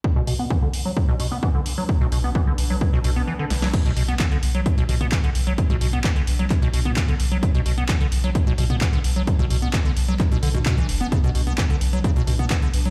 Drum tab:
CC |----------------|----------------|x---------------|----------------|
HH |--o---o---o---o-|--o---o---o---o-|xxoxxxoxxxoxxxox|xxoxxxoxxxoxxxox|
CP |----------------|----------------|----x-------x---|----x---x---x---|
SD |----------------|--------------oo|----------------|----------------|
T2 |----------------|----------------|----------oo----|-o---------o----|
BD |o---o---o---o---|o---o---o-------|o---o---o---o---|o---o---o---o---|

CC |----------------|----------------|----------------|
HH |xxoxxxoxxxoxxxox|xxoxxxoxxxoxxxox|xxoxxxoxxxo-xxox|
CP |----x-------x---|----x---x---x---|----x-------x---|
SD |----------------|----------------|----------------|
T2 |----------oo----|-o---------o----|----------oo----|
BD |o---o---o---o---|o---o---o---o---|o---o---o---o---|